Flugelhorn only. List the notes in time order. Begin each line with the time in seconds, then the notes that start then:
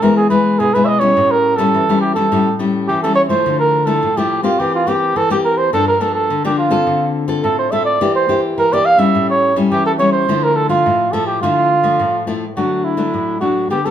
0.03 A#4
0.17 G#4
0.30 B4
0.59 G#4
0.74 B4
0.84 D#5 E5
1.00 C#5
1.31 A#4
1.57 A4
2.01 G4
2.15 A4
2.88 G4
3.03 A4
3.15 C#5
3.29 C5
3.60 A#4
3.86 A4
4.17 G4
4.43 F4
4.59 G4
4.75 F4
4.88 G4
5.17 A4
5.32 G4
5.45 A#4
5.58 C5
5.73 A4
5.88 A#4
6.01 A4
6.15 A4
6.46 G4
6.59 F4
7.44 A4
7.59 C5
7.72 E5
7.85 D5
8.16 C5
8.59 A#4
8.73 D5
8.86 F5
8.99 E5
9.30 C#5
9.72 G4
9.87 A4
9.99 C#5
10.12 C5
10.44 A#4
10.56 A4
10.70 F4
11.13 A4
11.27 G4
11.42 F4
12.57 F#4
12.85 E4
13.41 F#4
13.71 G4
13.85 A4